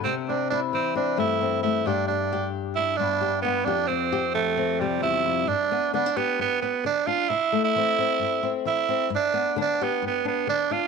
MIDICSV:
0, 0, Header, 1, 4, 480
1, 0, Start_track
1, 0, Tempo, 452830
1, 63, Time_signature, 4, 2, 24, 8
1, 11528, End_track
2, 0, Start_track
2, 0, Title_t, "Tenor saxophone"
2, 0, Program_c, 0, 66
2, 41, Note_on_c, 0, 60, 77
2, 154, Note_off_c, 0, 60, 0
2, 302, Note_on_c, 0, 62, 75
2, 522, Note_off_c, 0, 62, 0
2, 529, Note_on_c, 0, 62, 83
2, 639, Note_off_c, 0, 62, 0
2, 788, Note_on_c, 0, 60, 73
2, 1007, Note_off_c, 0, 60, 0
2, 1021, Note_on_c, 0, 62, 75
2, 1243, Note_off_c, 0, 62, 0
2, 1258, Note_on_c, 0, 64, 90
2, 1704, Note_off_c, 0, 64, 0
2, 1724, Note_on_c, 0, 64, 80
2, 1981, Note_on_c, 0, 62, 89
2, 1997, Note_off_c, 0, 64, 0
2, 2192, Note_off_c, 0, 62, 0
2, 2199, Note_on_c, 0, 62, 69
2, 2613, Note_off_c, 0, 62, 0
2, 2916, Note_on_c, 0, 64, 101
2, 3149, Note_on_c, 0, 62, 99
2, 3165, Note_off_c, 0, 64, 0
2, 3616, Note_off_c, 0, 62, 0
2, 3622, Note_on_c, 0, 59, 86
2, 3868, Note_on_c, 0, 62, 94
2, 3884, Note_off_c, 0, 59, 0
2, 4103, Note_on_c, 0, 60, 82
2, 4119, Note_off_c, 0, 62, 0
2, 4597, Note_off_c, 0, 60, 0
2, 4602, Note_on_c, 0, 57, 90
2, 5088, Note_on_c, 0, 55, 77
2, 5103, Note_off_c, 0, 57, 0
2, 5318, Note_off_c, 0, 55, 0
2, 5325, Note_on_c, 0, 64, 99
2, 5809, Note_on_c, 0, 62, 103
2, 5825, Note_off_c, 0, 64, 0
2, 6286, Note_off_c, 0, 62, 0
2, 6292, Note_on_c, 0, 62, 92
2, 6538, Note_on_c, 0, 59, 90
2, 6554, Note_off_c, 0, 62, 0
2, 6773, Note_off_c, 0, 59, 0
2, 6791, Note_on_c, 0, 59, 88
2, 7004, Note_off_c, 0, 59, 0
2, 7010, Note_on_c, 0, 59, 84
2, 7233, Note_off_c, 0, 59, 0
2, 7269, Note_on_c, 0, 62, 100
2, 7489, Note_on_c, 0, 65, 96
2, 7505, Note_off_c, 0, 62, 0
2, 7723, Note_on_c, 0, 64, 108
2, 7739, Note_off_c, 0, 65, 0
2, 8095, Note_off_c, 0, 64, 0
2, 8100, Note_on_c, 0, 64, 114
2, 9018, Note_off_c, 0, 64, 0
2, 9190, Note_on_c, 0, 64, 99
2, 9629, Note_off_c, 0, 64, 0
2, 9703, Note_on_c, 0, 62, 107
2, 10127, Note_off_c, 0, 62, 0
2, 10189, Note_on_c, 0, 62, 99
2, 10422, Note_on_c, 0, 59, 88
2, 10438, Note_off_c, 0, 62, 0
2, 10640, Note_off_c, 0, 59, 0
2, 10671, Note_on_c, 0, 59, 83
2, 10870, Note_off_c, 0, 59, 0
2, 10891, Note_on_c, 0, 59, 82
2, 11099, Note_off_c, 0, 59, 0
2, 11120, Note_on_c, 0, 62, 102
2, 11364, Note_on_c, 0, 65, 94
2, 11380, Note_off_c, 0, 62, 0
2, 11528, Note_off_c, 0, 65, 0
2, 11528, End_track
3, 0, Start_track
3, 0, Title_t, "Nylon-string guitar"
3, 0, Program_c, 1, 24
3, 50, Note_on_c, 1, 48, 67
3, 311, Note_on_c, 1, 60, 49
3, 550, Note_on_c, 1, 64, 72
3, 772, Note_on_c, 1, 52, 58
3, 774, Note_off_c, 1, 48, 0
3, 999, Note_off_c, 1, 60, 0
3, 1012, Note_on_c, 1, 60, 55
3, 1244, Note_on_c, 1, 43, 60
3, 1251, Note_on_c, 1, 57, 55
3, 1485, Note_off_c, 1, 60, 0
3, 1498, Note_on_c, 1, 60, 54
3, 1724, Note_off_c, 1, 57, 0
3, 1736, Note_on_c, 1, 57, 54
3, 1944, Note_off_c, 1, 43, 0
3, 1946, Note_off_c, 1, 52, 0
3, 1950, Note_off_c, 1, 57, 0
3, 1950, Note_off_c, 1, 60, 0
3, 1967, Note_on_c, 1, 43, 70
3, 1978, Note_off_c, 1, 64, 0
3, 1982, Note_on_c, 1, 67, 66
3, 2461, Note_off_c, 1, 67, 0
3, 2465, Note_on_c, 1, 67, 75
3, 2942, Note_on_c, 1, 62, 58
3, 3164, Note_off_c, 1, 43, 0
3, 3177, Note_on_c, 1, 43, 57
3, 3184, Note_on_c, 1, 59, 56
3, 3402, Note_off_c, 1, 67, 0
3, 3406, Note_on_c, 1, 67, 55
3, 3641, Note_off_c, 1, 59, 0
3, 3654, Note_on_c, 1, 59, 55
3, 3866, Note_off_c, 1, 59, 0
3, 3868, Note_off_c, 1, 43, 0
3, 3870, Note_off_c, 1, 62, 0
3, 3882, Note_on_c, 1, 41, 68
3, 3891, Note_off_c, 1, 67, 0
3, 3896, Note_on_c, 1, 67, 66
3, 4124, Note_on_c, 1, 60, 57
3, 4360, Note_off_c, 1, 67, 0
3, 4372, Note_on_c, 1, 67, 71
3, 4608, Note_on_c, 1, 53, 57
3, 4834, Note_off_c, 1, 60, 0
3, 4846, Note_on_c, 1, 60, 60
3, 5093, Note_on_c, 1, 48, 58
3, 5105, Note_on_c, 1, 55, 54
3, 5318, Note_off_c, 1, 41, 0
3, 5322, Note_on_c, 1, 40, 62
3, 5566, Note_off_c, 1, 40, 0
3, 5573, Note_on_c, 1, 41, 59
3, 5781, Note_off_c, 1, 53, 0
3, 5781, Note_off_c, 1, 60, 0
3, 5783, Note_off_c, 1, 67, 0
3, 5784, Note_off_c, 1, 48, 0
3, 5799, Note_off_c, 1, 41, 0
3, 5803, Note_on_c, 1, 43, 69
3, 6055, Note_off_c, 1, 55, 0
3, 6059, Note_on_c, 1, 59, 57
3, 6241, Note_off_c, 1, 43, 0
3, 6280, Note_off_c, 1, 59, 0
3, 6290, Note_on_c, 1, 50, 65
3, 6295, Note_on_c, 1, 59, 71
3, 6423, Note_off_c, 1, 59, 0
3, 6423, Note_on_c, 1, 62, 49
3, 6536, Note_on_c, 1, 67, 69
3, 6725, Note_off_c, 1, 50, 0
3, 6776, Note_on_c, 1, 43, 61
3, 7009, Note_off_c, 1, 62, 0
3, 7207, Note_off_c, 1, 43, 0
3, 7256, Note_on_c, 1, 50, 61
3, 7495, Note_on_c, 1, 62, 57
3, 7688, Note_off_c, 1, 50, 0
3, 7705, Note_off_c, 1, 62, 0
3, 7737, Note_on_c, 1, 48, 77
3, 7975, Note_on_c, 1, 57, 59
3, 8007, Note_off_c, 1, 67, 0
3, 8169, Note_off_c, 1, 48, 0
3, 8221, Note_on_c, 1, 52, 70
3, 8230, Note_on_c, 1, 60, 66
3, 8453, Note_off_c, 1, 60, 0
3, 8466, Note_on_c, 1, 60, 57
3, 8651, Note_off_c, 1, 52, 0
3, 8688, Note_on_c, 1, 43, 58
3, 8924, Note_off_c, 1, 60, 0
3, 8937, Note_on_c, 1, 60, 57
3, 9125, Note_off_c, 1, 43, 0
3, 9173, Note_on_c, 1, 52, 57
3, 9408, Note_off_c, 1, 60, 0
3, 9421, Note_on_c, 1, 60, 58
3, 9609, Note_off_c, 1, 52, 0
3, 9628, Note_off_c, 1, 57, 0
3, 9630, Note_off_c, 1, 60, 0
3, 9647, Note_on_c, 1, 43, 75
3, 9896, Note_on_c, 1, 59, 60
3, 10086, Note_off_c, 1, 43, 0
3, 10137, Note_on_c, 1, 50, 77
3, 10151, Note_on_c, 1, 62, 63
3, 10403, Note_on_c, 1, 67, 66
3, 10572, Note_off_c, 1, 50, 0
3, 10622, Note_on_c, 1, 43, 65
3, 10852, Note_off_c, 1, 62, 0
3, 10864, Note_on_c, 1, 62, 58
3, 11056, Note_off_c, 1, 43, 0
3, 11099, Note_on_c, 1, 50, 61
3, 11339, Note_off_c, 1, 62, 0
3, 11352, Note_on_c, 1, 62, 60
3, 11528, Note_off_c, 1, 50, 0
3, 11528, Note_off_c, 1, 59, 0
3, 11528, Note_off_c, 1, 62, 0
3, 11528, Note_off_c, 1, 67, 0
3, 11528, End_track
4, 0, Start_track
4, 0, Title_t, "Muted nylon-string guitar strokes"
4, 65, Note_on_c, 9, 29, 62
4, 171, Note_off_c, 9, 29, 0
4, 2233, Note_on_c, 9, 29, 54
4, 2339, Note_off_c, 9, 29, 0
4, 7022, Note_on_c, 9, 29, 56
4, 7128, Note_off_c, 9, 29, 0
4, 11528, End_track
0, 0, End_of_file